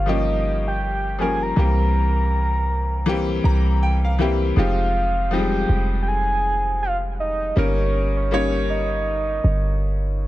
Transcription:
Already playing: G1 F3 G3 A#3 C#4 G4 F5
0.06 F3 G3 A#3 C#4 G4 D#5
0.68 G5
0.83 G5
1.19 F3 G3 A#3 C#4 A#4 G#5
1.43 A#5
1.56 C2 E3 G3 A#3 C4 G4
3.06 E3 G3 A#3 C4 G4
3.44 C2 A#5
3.83 G5
4.04 F5
4.19 E3 G3 A#3 C4 G4 E5
4.56 F1 F3 G#3 C4 D#4 G4 F5
5.31 F3 G3 C4 D#4 G5
5.38 G#3
5.69 F1
6.03 G5
6.08 G#5
6.83 F5
7.20 D#5
7.56 G1 G3 A#3 C#4 D#4 A#4 C#5
8.17 C#5
8.31 G3 A#3 C#4 D#4 C#5
8.70 D#5
9.44 G1

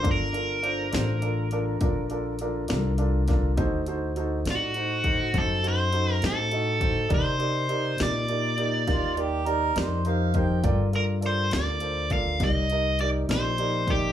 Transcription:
0.02 G1 D4 F4 A4 A#4, kick, closed hi-hat
0.11 A#4
0.33 D4 F4 A4 A#4, closed hi-hat
0.63 D4 F4 A4 C5, closed hi-hat
0.91 A1 D4 F4 A4 C5, snare, closed hi-hat
1.22 D4 F4 A4 A#4, closed hi-hat
1.51 D4 F4 A4 A#4, closed hi-hat
1.81 A#1 D4 F4 A4 A#4, kick, closed hi-hat
2.10 D4 F4 A4 A#4, closed hi-hat
2.39 D4 F4 A4 A#4, closed hi-hat
2.68 C2 D4 F4 A4 A#4, snare, closed hi-hat
2.98 D4 F4 A4 A#4, closed hi-hat
3.28 D4 F4 A4 A#4, kick, snare, closed hi-hat
3.57 D2 D#4 F#4 A4 C5, kick, closed hi-hat
3.86 D#4 F#4 A4 C5, closed hi-hat
4.16 D#4 F#4 A4 C5, closed hi-hat
4.45 A2 D#4 F#4 A4 D5, snare, closed hi-hat
4.50 F#4
4.74 D#4 F#4 A4 C5, closed hi-hat
5.04 D#4 F#4 A4 C5, kick, closed hi-hat
5.34 F#2 D#4 F#4 A4 C5, kick, closed hi-hat
5.38 A4
5.63 D#4 F#4 A4 C5, closed hi-hat
5.68 C5
5.92 D#4 F#4 A4 C5, closed hi-hat
6.13 A#4
6.22 A2 D#4 F#4 A4 C5, snare, closed hi-hat
6.26 A4
6.51 D#4 F#4 A4 D#5, closed hi-hat
6.79 D#4 F#4 A4 C5, kick, closed hi-hat
7.08 C3 D#4 G4 A#4 D5, kick, closed hi-hat
7.14 C5
7.38 D#4 G4 A#4 D5, closed hi-hat
7.69 D#4 G4 A#4 D5, closed hi-hat
7.98 A#2 D#4 G4 A#4 D5, snare, closed hi-hat
8.03 D5
8.28 D#4 G4 A#4 D5, closed hi-hat
8.57 D#4 G4 A#4 D5, closed hi-hat
8.86 D#2 D#4 F4 G4 A#4 F5, kick, snare, closed hi-hat
9.16 D#4 G4 A#4 D5, closed hi-hat
9.46 D#4 G4 A#4 D5, closed hi-hat
9.76 F2 D#4 G4 A#4 C5 D5, snare, closed hi-hat
10.05 D#4 G4 A#4 C5 F5, closed hi-hat
10.34 D#4 G4 A#4 C5 G5, kick, closed hi-hat
10.63 G2 F4 A4 A#4 D5, kick, closed hi-hat
10.93 F4 A4 A#4 D5, closed hi-hat
11.21 F4 A4 A#4 D5, closed hi-hat
11.26 C5
11.51 D2 F4 A4 A#4 D5, snare, closed hi-hat
11.80 F4 A4 A#4 C5, closed hi-hat
12.10 F4 A4 A#4 D5 F5, kick, closed hi-hat
12.40 C2 D#4 G4 A#4 D5, kick, snare, closed hi-hat
12.44 D#5
12.70 D#4 G4 A#4 D#5, closed hi-hat
12.99 D#4 G4 A#4 D5, closed hi-hat
13.28 A#1 D#4 G4 A#4 C5 D5, snare, closed hi-hat
13.58 D#4 G4 A#4 D5, closed hi-hat
13.87 D#4 G4 A#4 D5, kick, closed hi-hat

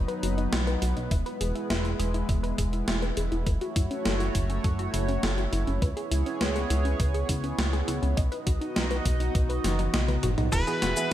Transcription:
Already playing: F#3 B3 D#4 B4
0.08 B4, closed hi-hat
0.23 F#1 F#4, closed hi-hat
0.38 D#4, closed hi-hat
0.52 B1 D#5, snare, closed hi-hat
0.67 B4, closed hi-hat
0.82 B1 F#4, closed hi-hat
0.97 B1 D#4, closed hi-hat
1.11 E1 G#3 E4 E5, kick, closed hi-hat
1.26 B4, closed hi-hat
1.41 E1 G#4, closed hi-hat
1.55 E4, closed hi-hat
1.70 E1 E5, snare, closed hi-hat
1.85 B4, closed hi-hat
1.99 E1 G#4, closed hi-hat
2.14 E4, closed hi-hat
2.29 E1 E5, kick, closed hi-hat
2.43 B4, closed hi-hat
2.58 E1 G#4, kick, closed hi-hat
2.73 E4, closed hi-hat
2.88 E1 E5, snare, closed hi-hat
3.02 B4, closed hi-hat
3.17 E1 G#4, closed hi-hat
3.32 E1 E4, closed hi-hat
3.46 F#1 A3 F#4 A4 C#5, kick, closed hi-hat
3.61 F#4, closed hi-hat
3.76 F#1 E4, kick, closed hi-hat
3.91 C#4, closed hi-hat
4.05 F#1 A4, snare, closed hi-hat
4.20 F#4, closed hi-hat
4.35 F#1 E4, kick, closed hi-hat
4.49 C#4, closed hi-hat
4.64 F#1 A4, kick, closed hi-hat
4.79 F#4, closed hi-hat
4.93 F#1 E4, closed hi-hat
5.08 C#4, closed hi-hat
5.23 F#1 A4, snare, closed hi-hat
5.38 F#4, closed hi-hat
5.52 F#1 E4, closed hi-hat
5.67 F#1 C#4, closed hi-hat
5.82 C#2 B3 G#4 B4 C#5, kick, closed hi-hat
5.97 G#4, closed hi-hat
6.11 C#2 E4, closed hi-hat
6.26 C#4, closed hi-hat
6.41 C#2 B4, snare, closed hi-hat
6.56 G#4, closed hi-hat
6.70 C#2 E4, closed hi-hat
6.85 C#4, closed hi-hat
7.00 C#2 B4, kick, closed hi-hat
7.14 G#4, closed hi-hat
7.29 C#2 E4, kick, closed hi-hat
7.44 C#4, closed hi-hat
7.58 C#2 B4, snare, closed hi-hat
7.73 G#4, closed hi-hat
7.88 C#2 E4, closed hi-hat
8.02 C#2 C#4, closed hi-hat
8.17 B1 D#4 F#4 D#5, kick, closed hi-hat
8.32 B4, closed hi-hat
8.46 B1 F#4, kick, closed hi-hat
8.61 D#4, closed hi-hat
8.76 B1 D#5, snare, closed hi-hat
8.91 B4, closed hi-hat
9.05 B1 F#4, kick, closed hi-hat
9.20 D#4, closed hi-hat
9.35 B1 D#5, kick, closed hi-hat
9.49 B4, closed hi-hat
9.64 F#1 F#4, snare, closed hi-hat, high tom
9.79 D#4, closed hi-hat, high tom
9.94 B1 D#5, snare, closed hi-hat, mid tom
10.08 B4, closed hi-hat, mid tom
10.23 F#1 F#4, closed hi-hat, mid tom
10.38 B1 D#4, closed hi-hat, mid tom
10.53 E1 E3 B3 E4 F#4 G#4 B4 E5 F#5 B5, kick, closed hi-hat, crash, shaker
10.67 E3 B3 E4 F#4 G#4, closed hi-hat, shaker
10.82 E1 F#4, snare, closed hi-hat
10.97 E3 B3 E4 F#4 G#4, closed hi-hat, shaker

